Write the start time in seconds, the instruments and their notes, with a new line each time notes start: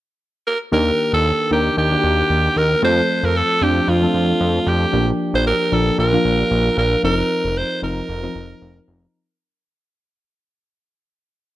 0.47 alto saxophone A#4
0.72 analog synth bass D#2, synth keys D#3 A#3 D4 G4, alto saxophone A#4
1.13 analog synth bass D#2, alto saxophone A4
1.51 analog synth bass D#2, synth keys D#3 A#3 D4 A#4, alto saxophone G4
1.77 analog synth bass D#2, alto saxophone G4
1.91 synth keys D#3 A#3 D4 F#4
1.99 synth keys G4
2.04 analog synth bass D#2
2.30 analog synth bass D#2
2.56 analog synth bass D#2, alto saxophone A#4
2.82 analog synth bass F2, synth keys F3 A3 C4 A4, alto saxophone C5
3.23 analog synth bass F2, alto saxophone A#4
3.37 alto saxophone A4
3.61 analog synth bass F2, synth keys F3 A3 C4 D4, alto saxophone G4
3.88 analog synth bass F2, alto saxophone F4
4.02 synth keys F3 A3 C4 A4
4.14 analog synth bass F2
4.41 analog synth bass F2
4.67 analog synth bass F2, alto saxophone G4
4.93 analog synth bass A#1, synth keys F3 A#3 D4 G4
5.34 analog synth bass A#1, alto saxophone C5
5.47 alto saxophone A#4
5.72 analog synth bass A#1, synth keys F3 A#3 D4 A#4, alto saxophone A4
5.98 analog synth bass A#1, alto saxophone A#4
6.13 synth keys F3 A#3 D4 F4
6.25 analog synth bass A#1
6.51 analog synth bass A#1
6.77 analog synth bass A#1, alto saxophone A#4
7.04 analog synth bass F1, synth keys F3 C4 D#4 A#4, alto saxophone A#4
7.44 analog synth bass F1
7.57 alto saxophone C5
7.82 analog synth bass F1, synth keys F3 C4 D#4 A#4, alto saxophone A#4
8.09 analog synth bass F1
8.23 synth keys F3 C4 D#4 A#4
8.35 analog synth bass F1
8.62 analog synth bass F1
8.88 analog synth bass F1